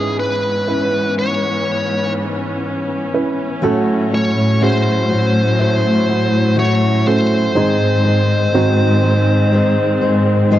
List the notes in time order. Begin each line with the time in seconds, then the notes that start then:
Already playing: G#2 E3 B3 C#4 E4 G#4 B4, downlifter
0.20 B4
0.67 C#4 E4 B4
1.19 C#5
3.14 C#4 E4 B4
3.62 A2 F#3 A3 C#4 E4 F#4 A4 C#5
4.11 E4 F#4 C#5
4.36 A2
4.60 A3 C#4 E4 F#4 G#4 C5
5.09 A2 E4 F#4
5.59 A3 E4 F#4 C5
6.08 A2 E4 F#4
6.56 A3 E4 F#4 C#5
7.07 C#4 F#4 A4 C5
7.55 G#2 D#3 G#3 C4 D#4 G#4 C5
8.04 G#3 D#4 G#4 C5
8.54 G#2 D#3 G#3 C4 D#4 F#4 G#4 C5
9.02 G#3 D#4 G#4 C5
9.52 G#3 D#4 G#4 C5
10.01 G#2 G#3 D#4 G#4 C5
10.50 G#2 D#3 G#3 D#4 G#4 C5